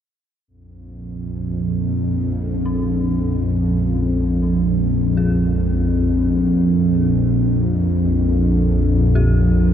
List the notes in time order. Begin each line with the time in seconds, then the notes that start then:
0.48 A#1 F2 A#2
1.34 G#3
1.65 C#4
2.65 C#4
4.73 F4
5.17 G#4
9.15 G4